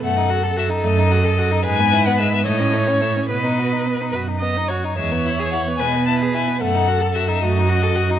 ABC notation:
X:1
M:6/8
L:1/16
Q:3/8=73
K:E
V:1 name="Violin"
f4 e2 d6 | g3 f e2 d3 c e2 | d6 z6 | e4 f2 g2 a2 g2 |
f4 e2 d6 |]
V:2 name="Viola"
A12 | B6 c6 | B6 B2 d2 c2 | c6 B6 |
A6 F6 |]
V:3 name="Violin"
A, D F A F D A, D F A F D | G, B, E B, G, B, A, C A, C A, C | B, D F D B, D F D B, D F D | G, B, E G E B, G, B, E G E B, |
A, D F A F D A, D F A F D |]
V:4 name="Cello" clef=bass
F,,6 F,,6 | G,,6 A,,6 | B,,6 F,,6 | E,,6 B,,6 |
F,,6 F,,6 |]